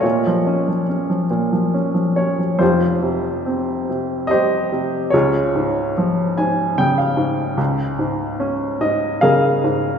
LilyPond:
<<
  \new Staff \with { instrumentName = "Upright piano" } { \time 3/4 \key bes \minor \tempo 4 = 72 << { des''4 r4. des''8 | \key f \minor c''2 ees''4 | des''4 r8 aes''8 g''16 f''8. | r4. ees''8 f''4 | } \\ { f'4. r4. | <f' g'>2 <g' c''>4 | <f' aes'>4. r4. | r2 <aes' bes'>4 | } >> }
  \new Staff \with { instrumentName = "Upright piano" } { \clef bass \time 3/4 \key bes \minor bes,16 f16 des'16 f16 des'16 f16 bes,16 f16 des'16 f16 des'16 f16 | \key f \minor <f,, f,>8 c8 c'8 c8 g8 c8 | des,8 aes,8 f8 aes,8 des8 aes,8 | des,8 aes,8 des'8 aes,8 des8 aes,8 | }
>>